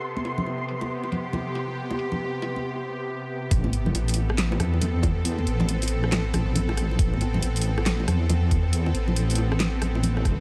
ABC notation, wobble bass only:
X:1
M:4/4
L:1/8
Q:"Swing 16ths" 1/4=138
K:Am
V:1 name="Wobble bass" clef=bass
z8 | z8 | A,,,2 A,,,3 E,,3- | E,, A,,,4 A,,,3 |
A,,,2 A,,,3 E,,3- | E,, A,,,6 E,,, |]